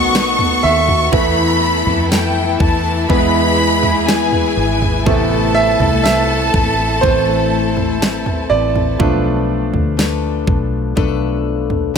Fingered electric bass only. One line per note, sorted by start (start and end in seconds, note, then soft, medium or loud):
0.00 0.60 B1 loud
0.64 1.09 D#2 loud
1.13 1.83 E2 loud
1.86 2.56 F2 medium
2.60 3.06 E2 loud
3.10 4.53 E2 loud
4.57 5.03 G#1 medium
5.06 5.76 A1 loud
5.80 6.50 C2 medium
6.54 7.00 A1 medium
7.04 8.47 A1 loud
8.51 8.96 A1 loud
9.00 9.70 B1 loud
9.74 10.44 D2 medium
10.47 10.93 B1 loud
10.97 11.98 B1 loud